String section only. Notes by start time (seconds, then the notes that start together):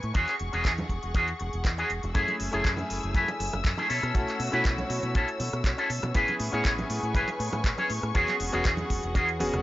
Already playing: B4 G#5 C#6
0.15 G#4 F#5
2.15 A3 G#5 E6
3.90 C#5
6.14 B4 G#5 C#6
8.15 G#4 F#5